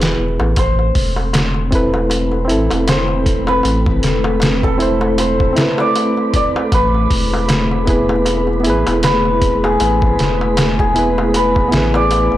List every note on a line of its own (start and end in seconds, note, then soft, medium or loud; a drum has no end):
0.00 0.15 E1 medium
0.00 0.59 B3 medium
0.00 0.59 E4 medium
0.00 0.59 G#4 medium
0.00 0.59 B4 loud
0.00 snare loud
0.00 closed hi-hat medium
0.00 darbuka tek soft
0.19 0.38 E1 medium
0.40 0.55 A1 medium
0.40 darbuka tek medium
0.56 0.91 A1 medium
0.56 12.37 A3 medium
0.56 12.37 C4 medium
0.56 6.68 C4 medium
0.56 6.68 A4 medium
0.56 2.89 C5 medium
0.56 12.37 B5 medium
0.56 kick loud
0.56 closed hi-hat medium
0.56 darbuka tek medium
0.79 darbuka tek soft
0.95 2.51 E1 medium
0.95 kick medium
0.95 open hi-hat medium
1.16 darbuka tek medium
1.33 snare loud
1.33 closed hi-hat medium
1.33 darbuka tek medium
1.54 darbuka tek soft
1.71 2.44 C4 medium
1.71 2.45 E4 medium
1.71 2.46 A4 medium
1.71 kick medium
1.71 closed hi-hat medium
1.75 2.47 B4 loud
1.94 darbuka tek medium
2.10 closed hi-hat medium
2.10 darbuka tek medium
2.32 darbuka tek soft
2.45 4.74 C4 medium
2.45 4.75 E4 medium
2.49 2.69 A1 medium
2.49 4.77 A4 medium
2.49 closed hi-hat medium
2.70 3.62 E1 medium
2.70 closed hi-hat soft
2.70 darbuka tek medium
2.88 3.54 C5 medium
2.88 snare loud
2.88 closed hi-hat medium
2.88 darbuka tek medium
3.08 darbuka tek soft
3.26 kick medium
3.26 closed hi-hat medium
3.47 5.26 B4 medium
3.47 darbuka tek medium
3.63 3.99 A1 medium
3.63 closed hi-hat medium
3.63 darbuka tek medium
3.86 kick loud
3.86 darbuka tek soft
4.03 5.54 E1 medium
4.03 snare medium
4.03 closed hi-hat medium
4.24 darbuka tek medium
4.40 snare loud
4.40 closed hi-hat medium
4.40 darbuka tek medium
4.63 7.57 A4 medium
4.63 kick medium
4.63 darbuka tek soft
4.78 5.52 C4 medium
4.78 5.52 E4 medium
4.78 5.53 A4 medium
4.78 closed hi-hat medium
4.82 5.54 C5 loud
5.01 darbuka tek medium
5.18 6.80 C5 medium
5.18 closed hi-hat medium
5.18 darbuka tek medium
5.40 kick medium
5.40 darbuka tek soft
5.53 6.68 C4 medium
5.53 6.70 E4 medium
5.53 closed hi-hat medium
5.58 6.71 A4 medium
5.58 snare loud
5.62 6.73 B4 medium
5.78 6.35 D5 medium
5.78 darbuka tek medium
5.96 closed hi-hat medium
5.96 darbuka tek medium
6.17 darbuka tek soft
6.33 8.82 D5 medium
6.33 kick medium
6.33 closed hi-hat medium
6.56 darbuka tek medium
6.72 7.07 A1 medium
6.72 12.37 E4 medium
6.72 12.37 G#4 medium
6.72 12.37 B4 medium
6.72 9.04 B4 medium
6.72 kick loud
6.72 closed hi-hat medium
6.72 darbuka tek medium
6.94 darbuka tek soft
7.11 8.66 E1 medium
7.11 kick medium
7.11 open hi-hat medium
7.34 darbuka tek medium
7.49 snare loud
7.49 closed hi-hat medium
7.49 darbuka tek medium
7.71 darbuka tek soft
7.85 8.59 B3 medium
7.85 8.60 E4 medium
7.85 8.61 G#4 medium
7.85 kick medium
7.85 closed hi-hat medium
7.90 8.62 B4 loud
8.09 darbuka tek medium
8.25 closed hi-hat medium
8.25 darbuka tek medium
8.47 darbuka tek soft
8.60 10.89 B3 medium
8.60 10.91 E4 medium
8.64 8.84 A1 medium
8.64 10.92 G#4 medium
8.64 closed hi-hat medium
8.70 10.94 B4 loud
8.87 9.77 E1 medium
8.87 closed hi-hat soft
8.87 darbuka tek medium
9.03 11.36 B4 loud
9.03 snare loud
9.03 closed hi-hat medium
9.03 darbuka tek medium
9.25 darbuka tek soft
9.42 kick medium
9.42 closed hi-hat medium
9.64 10.79 G#4 medium
9.64 darbuka tek medium
9.80 10.15 A1 medium
9.80 closed hi-hat medium
9.80 darbuka tek medium
10.02 kick medium
10.02 darbuka tek soft
10.19 11.70 E1 medium
10.19 snare medium
10.19 closed hi-hat medium
10.41 darbuka tek medium
10.57 snare loud
10.57 closed hi-hat medium
10.57 darbuka tek medium
10.79 12.37 G#4 medium
10.79 kick medium
10.79 darbuka tek soft
10.94 11.67 B3 medium
10.94 11.68 E4 medium
10.94 11.69 G#4 medium
10.94 closed hi-hat medium
10.99 11.70 B4 loud
11.18 darbuka tek medium
11.34 12.37 B4 medium
11.34 closed hi-hat medium
11.34 darbuka tek medium
11.55 kick medium
11.55 darbuka tek soft
11.68 12.37 B3 medium
11.68 12.37 E4 medium
11.68 closed hi-hat medium
11.73 12.29 A1 medium
11.73 12.37 G#4 medium
11.73 snare loud
11.78 12.37 B4 loud
11.94 12.37 D5 medium
11.94 darbuka tek medium
12.11 closed hi-hat medium
12.11 darbuka tek medium
12.32 12.37 E1 medium
12.32 darbuka tek soft